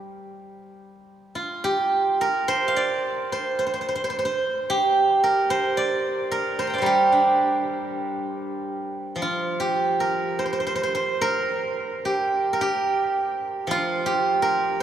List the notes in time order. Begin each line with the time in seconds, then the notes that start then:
Already playing: G3 G4
1.35 F4
1.64 G4
2.21 A#4
2.48 C5
2.68 F5
2.76 D5
3.32 C5
3.59 C5
3.67 C5
3.74 C5
3.81 C5
3.89 C5
3.95 C5
4.04 C5
4.10 C5
4.19 C5
4.25 C5
4.70 G4
5.24 A#4
5.50 C5
5.77 D5
6.31 A#4
6.59 C5 C6
6.67 G5 A#5
6.73 D5 F5
6.78 G3 C5
6.83 G4 A#4
7.12 D4
9.16 F3
9.22 F4
9.60 G4
10.00 A#4
10.39 C5
10.46 C5
10.53 C5
10.60 C5
10.67 C5
10.75 C5
10.83 C5
10.95 C5
11.21 A#4
12.05 G4
12.53 A#4
12.61 G4
13.67 F3 F4
14.06 G4
14.42 A#4